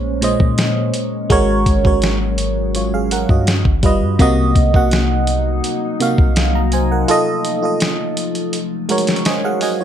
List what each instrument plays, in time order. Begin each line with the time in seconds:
Already playing: 808-style bass A#1, fm electric piano A#2 G#3 C5 C#5, ambient pad G#3 A#3 C#4
0.21 fm electric piano A#2 G#3 C5 D#5, closed hi-hat
0.40 808-style bass A#2, kick
0.58 snare, closed hi-hat
0.94 closed hi-hat
1.30 808-style bass G#1, ambient pad F#3 G#3, fm electric piano G#3 F#4 A#4 C#5, kick, closed hi-hat
1.66 808-style bass G#1, kick, closed hi-hat
1.84 fm electric piano G#3 F#4 A#4 C#5, kick
2.02 snare, closed hi-hat
2.38 closed hi-hat
2.75 fm electric piano F4 C#5, closed hi-hat
2.94 fm electric piano G#4 F5
3.11 fm electric piano A#4 F#5, closed hi-hat
3.29 808-style bass G2, fm electric piano F#4 D#5, kick
3.47 ambient pad F3 G3 B3, snare, closed hi-hat
3.65 808-style bass G1, kick
3.83 fm electric piano G3 F4 B4 D#5, kick, closed hi-hat
4.01 808-style bass G2
4.19 808-style bass C2, fm electric piano C3 A#3 F#4 D#5, ambient pad C3 F#3 A#3 D#4, kick, closed hi-hat
4.55 808-style bass C2, kick, closed hi-hat
4.73 808-style bass C2, fm electric piano C3 A#3 F#4 F#5, kick
4.91 snare, closed hi-hat
5.27 closed hi-hat
5.64 closed hi-hat
6.00 fm electric piano C3 A#3 F#4 F5, closed hi-hat
6.18 808-style bass C2, kick
6.36 snare, closed hi-hat
6.55 fm electric piano A#5
6.72 fm electric piano C5 G#5, closed hi-hat
6.92 fm electric piano A#4 F#5
7.08 ambient pad F3 A3, fm electric piano F4 A4 D#5, closed hi-hat
7.45 closed hi-hat
7.63 fm electric piano F4 A4 D#5
7.80 snare, closed hi-hat
8.17 closed hi-hat
8.35 closed hi-hat
8.53 ambient pad F#3 G#3 C#4, closed hi-hat
8.89 fm electric piano G#3 F#4 A#4 C#5, closed hi-hat
8.98 closed hi-hat
9.07 snare, closed hi-hat
9.16 closed hi-hat
9.25 fm electric piano C5 D#5 G#5, snare, closed hi-hat
9.45 fm electric piano G#4 F5 F#5
9.61 fm electric piano F#4 D#5 G#5, open hi-hat
9.81 fm electric piano F4 C#5